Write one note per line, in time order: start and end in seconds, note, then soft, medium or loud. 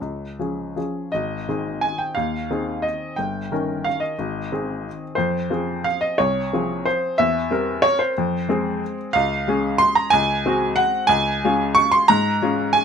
0.00 0.38 C#2 soft
0.00 0.76 C#5 soft
0.39 0.73 F3 soft
0.39 0.73 C#4 soft
0.39 0.74 G#4 soft
0.76 1.10 F3 soft
0.76 1.10 C#4 soft
0.76 1.10 G#4 soft
1.12 1.48 G#1 medium
1.12 1.83 D#5 medium
1.49 2.13 D#3 soft
1.49 2.14 C4 soft
1.49 2.14 G#4 soft
1.81 2.00 G#5 medium
1.98 2.16 G5 medium
2.15 2.49 D#2 medium
2.15 2.83 F5 medium
2.50 3.15 D#3 soft
2.50 3.15 C4 soft
2.50 3.15 G#4 soft
2.82 3.18 D#5 medium
3.16 3.51 G1 soft
3.16 3.85 G5 medium
3.51 4.15 D#3 soft
3.51 4.15 C#4 soft
3.51 4.15 A#4 soft
3.84 4.02 F5 medium
4.00 5.01 D#5 medium
4.19 4.51 G#1 medium
4.52 5.15 D#3 soft
4.52 5.15 C4 soft
4.52 5.15 G#4 soft
5.15 5.50 F2 medium
5.15 5.83 C5 medium
5.50 6.14 F3 soft
5.50 6.14 C4 soft
5.50 6.15 G#4 soft
5.84 6.02 F5 medium
6.01 6.18 D#5 medium
6.18 6.51 C2 medium
6.18 6.85 C#5 medium
6.53 7.16 F3 soft
6.53 7.15 C4 soft
6.53 7.16 G#4 medium
6.85 7.18 C5 medium
7.18 7.50 E2 medium
7.18 7.83 E5 medium
7.50 8.12 G3 soft
7.50 8.13 C4 medium
7.50 8.13 A#4 medium
7.82 7.99 C#5 medium
7.99 8.97 C5 medium
8.18 8.48 F2 medium
8.49 9.10 G#3 medium
8.49 9.10 C4 medium
8.49 9.11 G#4 medium
9.13 9.46 C#2 medium
9.13 9.80 F5 medium
9.48 10.10 G#3 medium
9.48 10.10 C#4 medium
9.48 10.10 G#4 medium
9.78 9.96 C6 loud
9.95 10.12 A#5 medium
10.10 10.44 C#2 medium
10.10 10.76 G#5 loud
10.46 11.07 G#3 medium
10.46 11.07 C4 medium
10.46 11.07 F#4 medium
10.76 11.09 F#5 loud
11.07 11.41 C#2 medium
11.07 11.75 G#5 loud
11.44 12.06 G#3 medium
11.44 12.06 C#4 medium
11.44 12.06 F4 medium
11.75 11.92 C#6 loud
11.92 12.08 C6 loud
12.08 12.41 G#2 medium
12.08 12.75 A#5 loud
12.42 12.85 G#3 medium
12.42 12.85 C#4 medium
12.42 12.85 F4 medium
12.73 12.85 G#5 loud